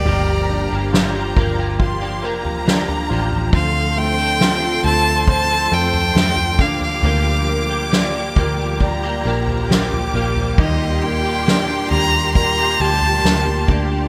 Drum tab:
SD |----o-------o---|----o-------o---|----o-------o---|----o-------o---|
FT |o-----o----o-o-o|o-----o----o-o-o|o-----o----o-o-o|o-----o----o-o--|
BD |------o-o-------|o-------o-----o-|------o-o-------|o-------o-----o-|